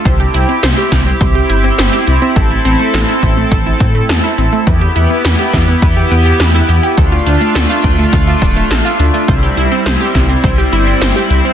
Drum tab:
HH |xxxxxxxx|xxxxxxxx|xxxxxxxx|xxxxxxxx|
SD |--oo--o-|--o---o-|--oo--o-|--o---o-|
BD |o--oo---|o--ooo--|o--oo---|o--ooo--|

HH |xxxxxxxx|
SD |--oo--o-|
BD |o--oo---|